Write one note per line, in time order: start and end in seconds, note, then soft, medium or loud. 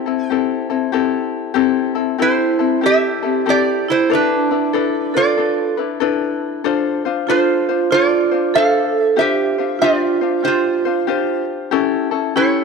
0.00 0.90 C5 medium
0.00 0.28 A5 medium
0.06 0.29 C4 soft
0.06 0.30 E4 medium
0.06 0.29 A4 medium
0.28 0.70 C4 medium
0.28 0.70 G4 medium
0.28 0.91 G5 medium
0.32 0.69 E4 medium
0.32 0.69 A4 medium
0.70 0.92 C4 medium
0.70 0.92 E4 medium
0.70 0.92 A4 medium
0.92 1.55 C4 medium
0.92 1.55 E4 medium
0.92 1.54 G4 medium
0.92 1.55 A4 medium
1.54 1.96 C4 medium
1.54 1.94 E4 medium
1.54 1.95 G4 loud
1.54 1.94 A4 loud
1.95 2.17 C4 soft
1.95 2.18 E4 medium
1.95 2.18 A4 medium
2.18 2.59 C4 medium
2.18 2.59 E4 medium
2.18 2.79 E4 medium
2.18 2.80 E4 medium
2.18 2.59 G4 medium
2.18 2.58 A4 medium
2.18 2.86 C5 medium
2.59 2.81 C4 soft
2.59 2.82 E4 medium
2.59 2.82 A4 medium
2.81 3.23 C4 medium
2.81 3.23 E4 medium
2.81 3.22 G4 medium
2.81 3.43 G4 medium
2.81 3.21 A4 medium
2.86 3.44 G4 medium
2.86 3.50 E5 loud
3.23 3.45 C4 soft
3.23 3.45 E4 soft
3.23 3.46 A4 medium
3.46 4.10 C4 medium
3.46 4.11 E4 medium
3.46 4.09 G4 medium
3.46 3.85 G4 medium
3.46 4.10 A4 medium
3.50 3.90 D5 loud
3.88 4.09 E4 medium
3.88 4.10 E4 medium
3.88 4.13 C5 medium
4.10 4.50 D4 medium
4.10 5.10 D4 medium
4.10 5.11 D4 medium
4.10 4.50 E4 medium
4.10 4.50 A4 medium
4.10 4.50 B4 medium
4.15 5.19 B4 medium
4.51 4.73 D4 soft
4.51 4.73 E4 medium
4.51 4.74 B4 medium
4.73 5.14 D4 medium
4.73 5.14 E4 medium
4.73 5.14 A4 medium
4.73 5.13 B4 medium
5.14 5.37 D4 soft
5.14 5.75 F4 medium
5.14 5.73 A4 medium
5.14 5.37 B4 medium
5.14 5.75 D5 medium
5.37 5.78 D4 medium
5.37 5.77 A4 medium
5.37 5.76 B4 medium
5.77 6.00 D4 soft
5.77 6.00 E4 soft
5.77 6.00 B4 medium
6.00 6.64 D4 loud
6.00 6.64 E4 medium
6.00 6.64 A4 medium
6.00 6.64 B4 loud
6.64 7.05 D4 medium
6.64 7.05 F4 medium
6.64 7.04 A4 medium
6.64 7.04 C5 loud
7.05 7.28 D4 soft
7.05 7.28 F4 medium
7.05 7.28 C5 medium
7.27 7.68 D4 medium
7.27 7.86 F4 medium
7.27 7.68 F4 medium
7.27 7.88 F4 medium
7.27 7.68 A4 medium
7.27 7.92 C5 medium
7.27 7.68 C5 medium
7.69 7.91 D4 soft
7.69 7.92 F4 soft
7.69 7.91 C5 medium
7.91 8.32 D4 medium
7.91 8.50 F4 medium
7.91 8.32 F4 medium
7.91 8.52 F4 medium
7.91 8.32 A4 medium
7.91 8.30 C5 medium
7.91 8.57 D5 medium
8.31 8.54 D4 soft
8.31 8.54 F4 soft
8.31 8.54 C5 medium
8.54 9.17 D4 medium
8.54 9.18 F4 medium
8.54 9.13 A4 medium
8.54 9.16 A4 medium
8.54 9.15 A4 medium
8.54 9.18 C5 medium
8.54 9.01 F5 loud
9.01 9.18 E5 loud
9.16 9.58 D4 medium
9.16 9.58 F4 medium
9.16 9.76 G4 medium
9.16 9.57 G4 medium
9.16 9.57 C5 medium
9.16 9.83 E5 medium
9.21 9.78 G4 medium
9.58 9.81 D4 soft
9.58 9.81 F4 soft
9.58 9.81 C5 soft
9.79 10.22 D4 medium
9.79 10.39 F4 medium
9.79 10.21 F4 medium
9.79 10.21 G4 medium
9.79 10.44 D5 medium
9.83 10.42 F4 medium
9.83 10.20 C5 medium
10.21 10.43 D4 soft
10.21 10.45 F4 soft
10.21 10.44 C5 medium
10.43 10.85 D4 medium
10.43 11.43 F4 medium
10.43 10.85 F4 medium
10.43 10.84 G4 medium
10.43 11.44 C5 medium
10.43 10.84 C5 medium
10.48 11.46 F4 medium
10.85 11.07 D4 soft
10.85 11.07 F4 soft
10.85 11.08 C5 medium
11.07 11.71 D4 medium
11.07 11.71 F4 medium
11.07 11.71 G4 medium
11.07 11.72 C5 medium
11.71 12.12 C#4 medium
11.71 12.11 E4 loud
11.71 12.11 G4 medium
11.71 12.10 A4 loud
12.11 12.34 C#4 soft
12.11 12.34 E4 soft
12.11 12.34 A4 medium
12.36 12.64 C#4 medium
12.36 12.64 E4 medium
12.36 12.64 G4 medium
12.36 12.64 A4 medium
12.36 12.64 C#5 medium